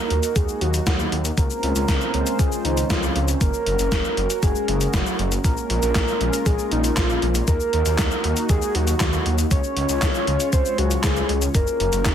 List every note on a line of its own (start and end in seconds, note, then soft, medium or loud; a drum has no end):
0.00 1.34 A#3 medium
0.00 1.36 D#4 medium
0.00 1.36 F#4 medium
0.00 0.37 A#4 loud
0.10 0.20 D#2 loud
0.10 closed hi-hat medium
0.23 closed hi-hat medium
0.23 cabasa medium
0.36 0.45 D#2 medium
0.36 0.63 G#4 loud
0.36 kick loud
0.36 closed hi-hat loud
0.36 cabasa soft
0.49 cabasa soft
0.61 0.80 D#2 loud
0.61 0.86 F#4 medium
0.61 closed hi-hat medium
0.74 closed hi-hat medium
0.74 cabasa medium
0.87 1.06 D#2 loud
0.87 1.22 F#4 medium
0.87 kick loud
0.87 snare loud
0.87 closed hi-hat loud
0.87 cabasa soft
0.99 cabasa soft
1.12 1.31 D#2 medium
1.12 closed hi-hat medium
1.25 closed hi-hat medium
1.25 cabasa medium
1.37 1.47 C#2 loud
1.37 3.39 G#3 medium
1.37 3.39 C4 medium
1.37 5.40 C#4 medium
1.37 3.39 F4 medium
1.37 2.41 A#4 loud
1.37 3.39 C5 loud
1.37 kick loud
1.37 closed hi-hat loud
1.37 cabasa soft
1.50 cabasa soft
1.63 1.73 C#2 medium
1.63 closed hi-hat medium
1.76 1.85 C#2 medium
1.76 closed hi-hat medium
1.76 cabasa medium
1.88 1.98 C#2 loud
1.88 kick loud
1.88 snare loud
1.88 closed hi-hat medium
1.88 cabasa soft
2.01 cabasa soft
2.14 2.23 C#2 loud
2.14 closed hi-hat medium
2.27 closed hi-hat medium
2.27 cabasa medium
2.39 2.49 C#2 medium
2.39 2.64 G#4 loud
2.39 kick loud
2.39 closed hi-hat medium
2.39 cabasa soft
2.52 cabasa soft
2.65 2.84 C#2 loud
2.65 2.92 D#4 medium
2.65 closed hi-hat medium
2.77 closed hi-hat medium
2.77 cabasa medium
2.90 3.09 C#2 loud
2.90 3.28 F4 loud
2.90 kick loud
2.90 snare loud
2.90 closed hi-hat loud
2.90 cabasa soft
3.03 cabasa soft
3.16 3.35 C#2 medium
3.16 closed hi-hat medium
3.28 closed hi-hat medium
3.28 cabasa medium
3.41 3.51 F#1 loud
3.41 5.42 F#4 medium
3.41 4.39 A#4 loud
3.41 5.42 A#4 loud
3.41 kick loud
3.41 closed hi-hat medium
3.41 cabasa medium
3.54 cabasa soft
3.66 3.76 F#1 medium
3.66 closed hi-hat medium
3.79 3.89 F#1 medium
3.79 closed hi-hat medium
3.79 cabasa medium
3.92 4.01 F#1 medium
3.92 kick loud
3.92 snare loud
3.92 closed hi-hat medium
3.92 cabasa soft
4.05 cabasa soft
4.17 4.27 F#1 loud
4.17 closed hi-hat medium
4.30 closed hi-hat medium
4.30 cabasa medium
4.43 4.52 F#1 medium
4.43 4.95 G#4 loud
4.43 kick loud
4.43 closed hi-hat medium
4.43 cabasa soft
4.56 cabasa soft
4.68 4.87 F#1 medium
4.68 closed hi-hat medium
4.81 closed hi-hat medium
4.81 cabasa medium
4.94 5.03 F#1 loud
4.94 5.32 F#4 loud
4.94 kick loud
4.94 snare loud
4.94 closed hi-hat medium
4.94 cabasa soft
5.06 cabasa soft
5.19 5.38 F#1 loud
5.19 closed hi-hat medium
5.32 closed hi-hat medium
5.32 cabasa medium
5.44 5.54 A#1 loud
5.44 7.46 G#3 medium
5.44 9.47 A#3 medium
5.44 7.46 C#4 medium
5.44 7.46 F4 medium
5.44 6.48 A#4 loud
5.44 7.46 A#4 loud
5.44 kick loud
5.44 closed hi-hat medium
5.44 cabasa medium
5.57 cabasa soft
5.70 5.79 A#1 medium
5.70 closed hi-hat medium
5.83 5.92 A#1 medium
5.83 closed hi-hat medium
5.83 cabasa medium
5.95 6.05 A#1 medium
5.95 kick loud
5.95 snare loud
5.95 clap medium
5.95 closed hi-hat medium
5.95 cabasa soft
6.08 cabasa soft
6.21 6.30 A#1 loud
6.21 closed hi-hat medium
6.33 closed hi-hat medium
6.33 cabasa medium
6.46 6.56 A#1 medium
6.46 6.71 G#4 loud
6.46 kick loud
6.46 closed hi-hat medium
6.46 cabasa medium
6.59 cabasa soft
6.71 6.91 A#1 loud
6.71 6.99 D#4 medium
6.71 closed hi-hat medium
6.84 closed hi-hat medium
6.84 cabasa medium
6.97 7.16 A#1 loud
6.97 7.35 F4 loud
6.97 kick loud
6.97 snare loud
6.97 clap medium
6.97 closed hi-hat medium
6.97 cabasa soft
7.10 cabasa soft
7.22 7.41 A#1 medium
7.22 closed hi-hat medium
7.35 closed hi-hat medium
7.35 cabasa medium
7.48 7.57 D#2 loud
7.48 9.49 D#4 medium
7.48 9.49 F#4 loud
7.48 8.46 A#4 loud
7.48 kick loud
7.48 closed hi-hat medium
7.48 cabasa medium
7.60 cabasa soft
7.73 7.83 D#2 medium
7.73 closed hi-hat medium
7.86 7.95 D#2 medium
7.86 closed hi-hat medium
7.86 cabasa medium
7.98 8.08 D#2 medium
7.98 kick loud
7.98 snare loud
7.98 clap loud
7.98 closed hi-hat medium
7.98 cabasa medium
8.11 cabasa soft
8.24 8.34 D#2 loud
8.24 closed hi-hat medium
8.37 closed hi-hat medium
8.37 cabasa medium
8.49 8.59 D#2 medium
8.49 8.77 G#4 loud
8.49 kick loud
8.49 closed hi-hat medium
8.49 cabasa medium
8.62 cabasa soft
8.75 8.94 D#2 loud
8.75 9.00 F#4 loud
8.75 closed hi-hat medium
8.88 closed hi-hat medium
8.88 cabasa medium
9.00 9.19 D#2 loud
9.00 9.36 F#4 loud
9.00 kick loud
9.00 snare loud
9.00 clap medium
9.00 closed hi-hat medium
9.00 cabasa medium
9.13 cabasa soft
9.26 9.45 D#2 medium
9.26 closed hi-hat medium
9.38 closed hi-hat medium
9.38 cabasa medium
9.51 9.61 C#2 loud
9.51 11.53 G#3 medium
9.51 11.53 C#4 medium
9.51 11.53 F4 medium
9.51 11.53 C#5 loud
9.51 10.49 C#5 loud
9.51 kick loud
9.51 closed hi-hat medium
9.51 cabasa medium
9.64 cabasa soft
9.77 9.86 C#2 medium
9.77 closed hi-hat medium
9.89 9.99 C#2 medium
9.89 closed hi-hat medium
9.89 cabasa medium
10.02 10.12 C#2 loud
10.02 kick loud
10.02 snare loud
10.02 clap loud
10.02 closed hi-hat medium
10.02 cabasa medium
10.15 cabasa soft
10.27 10.37 C#2 loud
10.27 closed hi-hat medium
10.40 closed hi-hat medium
10.40 cabasa medium
10.53 10.62 C#2 medium
10.53 10.80 C5 loud
10.53 kick loud
10.53 closed hi-hat medium
10.53 cabasa medium
10.66 cabasa soft
10.78 10.97 C#2 loud
10.78 11.05 F#4 loud
10.78 closed hi-hat medium
10.91 closed hi-hat medium
10.91 cabasa medium
11.04 11.23 C#2 loud
11.04 11.42 G#4 loud
11.04 kick loud
11.04 snare loud
11.04 clap loud
11.04 closed hi-hat medium
11.04 cabasa medium
11.16 cabasa soft
11.29 11.48 C#2 medium
11.29 closed hi-hat medium
11.42 closed hi-hat medium
11.42 cabasa medium
11.55 11.64 F#1 loud
11.55 12.15 C#4 medium
11.55 12.15 F#4 medium
11.55 12.15 A#4 loud
11.55 kick loud
11.55 closed hi-hat loud
11.55 cabasa medium
11.67 cabasa soft
11.80 11.90 F#1 medium
11.80 closed hi-hat medium
11.93 12.02 F#1 medium
11.93 closed hi-hat medium
11.93 cabasa medium
12.05 12.15 F#1 medium
12.05 kick loud
12.05 snare loud
12.05 clap loud
12.05 closed hi-hat loud
12.05 cabasa medium